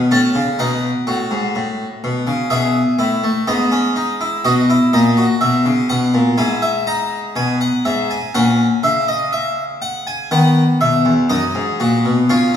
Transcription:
Already playing: B2
0.11 A2 C#4 A5
0.35 C#3
0.59 B2 D#4 F#5
1.07 A2 F#4
1.31 G#2
1.55 A2
2.04 B2
2.27 C#3
2.50 B2 G#4 E5
2.99 A2 E4
3.24 A3
3.47 G#2 B3 D#5
3.72 C#4
3.96 D#4
4.21 E4
4.44 B2 F#4 D#5
4.70 E4
4.93 A#2 D#4 D#5
5.17 F#4
5.41 B2 E5
5.66 C#3
5.89 B2 F#5
6.14 A#2
6.38 G#2 E4 G#5
6.62 E5
6.87 D#4 A#5
7.36 B2 G#5
7.61 F#5
7.85 G#2 E5
8.11 G#5
8.35 A#2 C#4 F#5
8.83 C#3 E5
9.08 D#5
9.33 E5
9.82 F#5
10.07 G#5
10.31 D#3 B3 F#5
10.81 B2 E5
11.05 E2
11.30 F#2 D#4 D#5
11.55 G#2
11.80 A#2 F#4
12.05 B2
12.30 C#3 F4 C#5

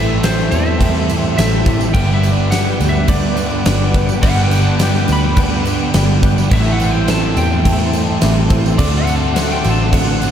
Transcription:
Already playing: A1 A2 E3 G3 A3 C4 E4 G4 A4 E5 G5 C6
0.23 E3 C4 E4 A4 C5, snare, tambourine, crash
0.38 snare, tambourine
0.50 E2 E3 G3 C4 E4 E5, tambourine, crash
0.66 tambourine
0.80 A2 E3 G3 A3 C4 E4 A4, kick, tambourine, crash
0.96 tambourine
1.09 C4 E4 A4, tambourine, crash
1.24 tambourine
1.37 A1 E3 G3 C4 E4 G4 A4 E5, snare, tambourine, crash
1.65 G3 C4 E4, kick, tambourine, crash
1.81 tambourine
1.94 G1 G2 D3 G3 B3 D4 G4 B4 F#5 G5 D6, kick, crash
2.09 tambourine
2.14 E5
2.23 B3, tambourine, crash
2.32 D5
2.51 G3 B3 D4 G4 F#5, snare, tambourine, crash
2.67 G5, snare
2.80 D2 B3 D4, tambourine, crash
2.89 E5
2.96 tambourine
3.08 G2 D3 G3 B3 D4 G4 D5, kick, crash
3.36 G3 B3 D4 G4, tambourine, crash
3.65 G1 D3 G3 B3 D4 G4, snare, tambourine, crash
3.94 B3 D4, kick, tambourine, crash
4.09 tambourine
4.22 G1 G2 D3 G3 B3 D4 G4 F#5, kick, crash
4.37 tambourine
4.44 G5
4.51 B3, tambourine, crash
4.63 A5
4.79 G3 B3 D4 G4 G5, snare, tambourine, crash
4.94 snare, tambourine
5.07 D2 B3 D4, tambourine, crash
5.13 B5
5.24 tambourine
5.36 G2 D3 G3 B3 D4 G4, kick, crash
5.65 G3 B3 D4 G4, tambourine, crash
5.93 G1 D3 G3 B3 D4 G4, snare, tambourine, crash
6.23 F#3 B3 D4, kick, tambourine, crash
6.38 tambourine
6.51 A1 A2 E3 G3 A3 C4 E4 A4 E5 C6, kick, crash
6.67 tambourine
6.72 F#5
6.80 E3, tambourine, crash
6.91 G5
7.08 E3 C4 E4 A4 A5, snare, tambourine, crash
7.23 tambourine
7.37 E2 E3 G3 C4 E4 G5, tambourine, crash
7.53 tambourine
7.65 A2 E3 G3 A3 C4 E4 A4, kick, crash
7.93 C4 E4 A4, tambourine, crash
8.21 A1 E3 G3 C4 E4 G4 A4, snare, tambourine, crash
8.50 G3 C4 E4, kick, tambourine, crash
8.66 tambourine
8.78 D2 D3 A3 C4 D4 F#4 A4 D5 F#5, kick, crash
8.94 F#5, tambourine
9.07 A3, tambourine, crash
9.16 A5
9.23 tambourine
9.34 D3 C4 F#4 A4 F#5, snare, crash
9.38 tambourine
9.51 G5, snare
9.63 A1 A3 C4 F#4, tambourine, crash
9.71 A5
9.92 D3 A3 C4 F#4 A4 F#5, kick, crash
10.08 tambourine
10.22 C4 F#4 A4, tambourine, crash

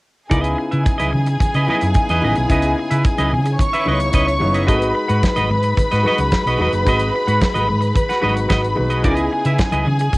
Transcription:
0.30 C#2 C#3 B3 D#4 E4 G#4 A#4 D5 G#5, kick, closed hi-hat, muted conga
0.41 E4 B4 D#5, closed hi-hat
0.58 muted clean electric guitar stroke
0.71 C#3 E4 B4 E5, closed hi-hat
0.85 muted clean electric guitar stroke, kick, closed hi-hat
0.98 C#2 E4 B4 D#5, closed hi-hat, high conga
1.12 C#3, muted clean electric guitar stroke, low conga
1.26 muted clean electric guitar stroke, closed hi-hat
1.40 muted clean electric guitar stroke, muted fingered electric bass stroke, kick, closed hi-hat, muted conga, low conga
1.54 C#3 E4 B4 D#5, closed hi-hat, muted conga
1.66 C#3 B3 D#4 E4 B4, high conga
1.70 D#5
1.81 F#2, muted clean electric guitar stroke, closed hi-hat
1.94 muted clean electric guitar stroke, kick, closed hi-hat, muted conga, high conga
2.09 E2 E4 B4 D#5, closed hi-hat, muted conga
2.21 A1 C#3 B3 D#4 E4 B4 D#5, high conga, low conga
2.36 B1, muted clean electric guitar stroke, closed hi-hat
2.48 C#2 C#3 B3 D#4 E4 B4 D#5, kick, closed hi-hat
2.62 closed hi-hat
2.78 muted clean electric guitar stroke
2.91 C#3 E4 B4 E5, closed hi-hat
3.05 muted clean electric guitar stroke, kick, closed hi-hat, muted conga
3.18 C#2 E4 B4 D#5, closed hi-hat, high conga
3.31 C#3, muted clean electric guitar stroke, low conga
3.45 muted clean electric guitar stroke, closed hi-hat
3.58 C#5 C#6, muted clean electric guitar stroke, kick, closed hi-hat, muted conga, low conga
3.73 E4 B4 E5, closed hi-hat
3.85 C#2 C#3 B3 D#4 E4 B4 D#5, high conga
4.00 muted clean electric guitar stroke, closed hi-hat
4.13 C#2 E4 B4 D#5, kick, closed hi-hat, high conga
4.27 muted clean electric guitar stroke, closed hi-hat
4.39 F#1 C#3 B3 D#4 E4, muted clean electric guitar stroke, high conga, low conga
4.54 E4 B4 D#5, closed hi-hat
4.67 G#1 G#3 D#4 F#4 A4 B4 D#5 B5, kick, closed hi-hat
4.75 B4
4.82 closed hi-hat, muted conga
4.95 muted clean electric guitar stroke
5.08 G#2 F#4 B4 F#5, closed hi-hat
5.23 muted clean electric guitar stroke, kick, snare, closed hi-hat, muted conga
5.36 G#1 F#4 B4 D#5, closed hi-hat, muted conga, high conga
5.50 G#2, muted clean electric guitar stroke, low conga
5.63 muted clean electric guitar stroke, closed hi-hat
5.77 muted clean electric guitar stroke, muted fingered electric bass stroke, kick, closed hi-hat, muted conga, low conga
5.91 G#2 F#4 B4 D#5, snare, closed hi-hat, muted conga
6.03 G#3 D#4 F#4 B4, high conga
6.07 B4 D#5
6.18 C#2, muted clean electric guitar stroke, closed hi-hat
6.32 muted clean electric guitar stroke, kick, snare, closed hi-hat, muted conga, high conga
6.45 B1 F#4 B4 D#5, closed hi-hat, muted conga
6.58 E1 G#3 D#4 F#4 B4, high conga, low conga
6.62 D#5
6.73 F#1, muted clean electric guitar stroke, closed hi-hat
6.84 G#1 G#3 D#4 F#4 B4, kick, closed hi-hat
6.88 B4 D#5
6.99 closed hi-hat, muted conga
7.15 muted clean electric guitar stroke
7.27 G#2 F#4 B4 F#5, closed hi-hat
7.41 muted clean electric guitar stroke, kick, snare, closed hi-hat
7.54 G#1 F#4 B4 D#5, closed hi-hat, muted conga, high conga
7.68 G#2, muted clean electric guitar stroke, low conga
7.81 muted clean electric guitar stroke, closed hi-hat
7.95 muted clean electric guitar stroke, kick, closed hi-hat, muted conga, low conga
8.09 F#4 B4 F#5, snare, closed hi-hat, muted conga
8.21 G#1 G#3 D#4 F#4 B4 D#5, high conga
8.36 muted clean electric guitar stroke, closed hi-hat
8.49 G#1 F#4 B4 D#5, kick, snare, closed hi-hat, high conga
8.62 muted clean electric guitar stroke, closed hi-hat, muted conga
8.75 B1 G#3 D#4 F#4 B4, muted clean electric guitar stroke, high conga, low conga
8.90 F#4 B4 D#5, closed hi-hat
9.03 C#2 C#3 B3 D#4 E4 G#4 A#4 D#5 G#5, kick, closed hi-hat, muted conga
9.15 E4 B4, closed hi-hat, muted conga
9.32 muted clean electric guitar stroke
9.45 C#3 E4 B4 E5, closed hi-hat
9.59 muted clean electric guitar stroke, kick, snare, closed hi-hat
9.71 C#2 E4 B4 D#5, closed hi-hat, muted conga, high conga
9.86 C#3, muted clean electric guitar stroke, low conga
9.99 muted clean electric guitar stroke, closed hi-hat
10.13 muted clean electric guitar stroke, muted fingered electric bass stroke, kick, closed hi-hat, muted conga, low conga

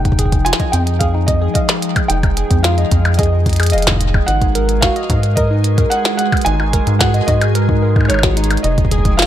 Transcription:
Already playing: F1 F3 G#3 D#4 G#4 G5
0.05 D#4, kick, closed hi-hat
0.12 kick
0.19 G#4, kick, closed hi-hat
0.26 kick
0.32 kick, closed hi-hat
0.45 F4 G#5, closed hi-hat
0.53 snare
0.60 D#5, kick, closed hi-hat
0.72 F2 G5, closed hi-hat
0.87 closed hi-hat
0.99 G#4 F5, kick, closed hi-hat
1.14 D#4
1.26 D#5, kick, closed hi-hat
1.42 G#4
1.54 D#5 F5, kick, closed hi-hat
1.69 snare, closed hi-hat
1.82 closed hi-hat
1.96 kick, closed hi-hat, percussion blips
2.08 F1 D#4 G5, closed hi-hat
2.23 D#4, kick, closed hi-hat, percussion blips
2.37 G#4, closed hi-hat
2.51 F2, kick, closed hi-hat
2.63 F4 F5, snare, closed hi-hat
2.78 D#5, closed hi-hat
2.92 F2, kick, closed hi-hat
3.05 closed hi-hat, percussion blips
3.14 D#5, closed hi-hat
3.19 G#4, kick, closed hi-hat
3.23 closed hi-hat
3.32 D#4
3.46 kick, closed hi-hat
3.49 closed hi-hat
3.53 closed hi-hat
3.56 closed hi-hat
3.60 G#4, closed hi-hat, percussion blips
3.63 closed hi-hat
3.67 closed hi-hat
3.70 D#5, closed hi-hat
3.73 F1 F5, closed hi-hat
3.78 closed hi-hat
3.82 closed hi-hat
3.87 kick, snare
3.92 kick
3.96 kick
4.01 kick, closed hi-hat
4.05 kick
4.10 kick
4.14 kick, percussion blips
4.27 G#1 G#3 D#4 F#4 A#4 B4 F#5, closed hi-hat
4.42 D#4, kick, closed hi-hat
4.55 A#4, closed hi-hat
4.69 closed hi-hat
4.81 F#4 F5, kick, snare, closed hi-hat
4.96 D#5, closed hi-hat
5.10 G#2, kick, closed hi-hat
5.23 closed hi-hat
5.36 A#4 D#5, kick, closed hi-hat
5.51 D#4
5.64 closed hi-hat
5.78 A#4, kick, closed hi-hat
5.90 F#5, closed hi-hat
6.05 snare, closed hi-hat
6.17 F#5, closed hi-hat
6.32 kick, closed hi-hat, percussion blips
6.37 closed hi-hat
6.41 G#5, closed hi-hat
6.46 G#1 D#4 G#4, closed hi-hat
6.60 D#4, percussion blips
6.73 A#4, kick, closed hi-hat
6.87 G#2, closed hi-hat
6.99 F#4 F#5, kick, snare, closed hi-hat
7.14 D#5, closed hi-hat
7.26 G#2 D#5, kick, closed hi-hat
7.42 closed hi-hat, percussion blips
7.55 A#4, closed hi-hat
7.69 D#4, kick
7.82 A#4
7.96 D#4, kick, percussion blips
8.01 percussion blips
8.05 C#5, percussion blips
8.10 G#1 D#4, closed hi-hat, percussion blips
8.14 percussion blips
8.19 percussion blips
8.23 F#4, kick, snare, closed hi-hat
8.37 D#4, closed hi-hat
8.44 closed hi-hat
8.51 closed hi-hat, percussion blips
8.57 closed hi-hat
8.63 F1 F3 D#4 D#5 G5, closed hi-hat
8.78 D#4, kick, closed hi-hat
8.85 kick
8.91 G#4, kick, closed hi-hat
8.98 kick
9.05 kick, closed hi-hat
9.17 F4 F5, snare, closed hi-hat
9.22 snare

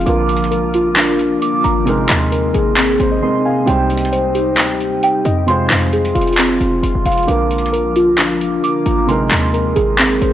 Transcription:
Already playing: F3 F4
0.01 D3, closed hi-hat
0.06 A#1 D3 A#3 F4 A#4 D6, closed hi-hat
0.29 closed hi-hat
0.36 closed hi-hat
0.44 closed hi-hat
0.51 A#4, closed hi-hat
0.74 F4, closed hi-hat
0.96 D4, clap, closed hi-hat
1.19 closed hi-hat
1.42 D6, closed hi-hat
1.64 G#1 A#5, closed hi-hat
1.85 C3 G#3 D#4 A#4 C6, closed hi-hat
2.09 D#2, clap, closed hi-hat
2.32 A#4, closed hi-hat
2.54 G#1 G#4, closed hi-hat
2.77 C4, clap, closed hi-hat
3.00 G#1 C5, closed hi-hat
3.12 D#5
3.21 C3 G#3 D#4 A#4 D#5 C6
3.45 F5 G#5
3.65 C2 C3 G3 D#4 C5 G5, closed hi-hat
3.90 closed hi-hat
3.97 closed hi-hat
4.05 closed hi-hat
4.12 C5, closed hi-hat
4.35 G4, closed hi-hat
4.58 D2 D#4, clap, closed hi-hat
4.80 closed hi-hat
5.03 G5, closed hi-hat
5.25 F2 D#5, closed hi-hat
5.46 C3 F3 G#3 F4 C5 C6, closed hi-hat
5.70 F2, clap, closed hi-hat
5.93 G#4, closed hi-hat
6.05 closed hi-hat
6.15 F1 F4, closed hi-hat, open hi-hat
6.21 closed hi-hat
6.27 closed hi-hat
6.33 closed hi-hat
6.38 C4, clap, closed hi-hat
6.60 F1, closed hi-hat
6.83 F1 C6, closed hi-hat
6.95 F1
7.06 F1 F5, closed hi-hat
7.12 closed hi-hat
7.18 closed hi-hat
7.23 D3, closed hi-hat
7.28 A#1 D3 F3 A#3 F4 A#4 D6, closed hi-hat
7.51 closed hi-hat
7.58 closed hi-hat
7.66 closed hi-hat
7.72 A#4, closed hi-hat
7.96 F4, closed hi-hat
8.18 D4, clap, closed hi-hat
8.41 closed hi-hat
8.64 D6, closed hi-hat
8.86 G#1 A#5, closed hi-hat
9.07 C3 G#3 D#4 A#4 C6, closed hi-hat
9.31 D#2, clap, closed hi-hat
9.54 A#4, closed hi-hat
9.76 G#1 G#4, closed hi-hat
9.99 C4, clap, closed hi-hat
10.21 G#1 C5, closed hi-hat

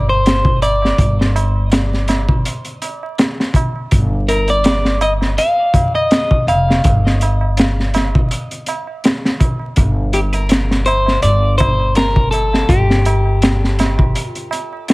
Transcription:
Already playing: G1
0.08 C5, tabla na
0.25 snare, closed hi-hat, tabla na
0.45 kick
0.62 D5, closed hi-hat, tabla na
0.82 snare, tabla na
0.98 G1, kick, closed hi-hat, tabla na
1.21 snare
1.36 closed hi-hat, tabla na
1.56 tabla na
1.71 snare, closed hi-hat, tabla na
1.94 snare
2.08 snare, closed hi-hat, tabla na
2.29 kick, tabla na
2.45 closed hi-hat, tabla na
2.65 closed hi-hat
2.82 closed hi-hat, tabla na
3.03 tabla na
3.18 snare, closed hi-hat, tabla na
3.40 snare
3.54 kick, closed hi-hat, tabla na
3.76 tabla na
3.91 G1, kick, closed hi-hat, tabla na
4.28 A#4, closed hi-hat, tabla na
4.48 D5, closed hi-hat, tabla na
4.64 snare, closed hi-hat, tabla na
4.85 snare
5.01 D#5, closed hi-hat, tabla na
5.21 snare, tabla na
5.38 F5, closed hi-hat, tabla na
5.74 kick, closed hi-hat, tabla na, tabla ge
5.95 D#5, tabla na
6.11 snare, closed hi-hat, tabla na
6.31 kick
6.47 F1 F5, closed hi-hat, tabla na
6.68 snare, tabla na
6.84 G1, kick, closed hi-hat, tabla na
7.06 snare
7.21 closed hi-hat, tabla na
7.41 tabla na
7.57 snare, closed hi-hat, tabla na
7.80 snare
7.94 snare, closed hi-hat, tabla na
8.14 kick, tabla na
8.31 closed hi-hat, tabla na
8.51 closed hi-hat
8.66 closed hi-hat, tabla na
8.87 tabla na
9.04 snare, closed hi-hat, tabla na
9.25 snare
9.40 kick, closed hi-hat, tabla na
9.59 tabla na
9.76 G1, kick, closed hi-hat, tabla na
10.13 G4, closed hi-hat, tabla na
10.33 A#4, closed hi-hat, tabla na
10.49 snare, closed hi-hat, tabla na
10.71 snare
10.86 C5, closed hi-hat, tabla na
11.06 snare, tabla na
11.22 G1 D5, closed hi-hat, tabla na
11.58 C5, kick, closed hi-hat, tabla na, tabla ge
11.80 tabla na
11.95 A#4, snare, closed hi-hat, tabla na
12.16 kick
12.31 A4, closed hi-hat, tabla na
12.53 snare, tabla na
12.69 G1 G4, kick, closed hi-hat, tabla na
12.90 snare
13.05 closed hi-hat, tabla na
13.26 tabla na
13.42 snare, closed hi-hat, tabla na
13.64 snare
13.79 snare, closed hi-hat, tabla na
13.98 kick, tabla na
14.14 closed hi-hat, tabla na
14.31 F4
14.35 closed hi-hat
14.51 closed hi-hat, tabla na
14.73 tabla na
14.88 snare, closed hi-hat, tabla na

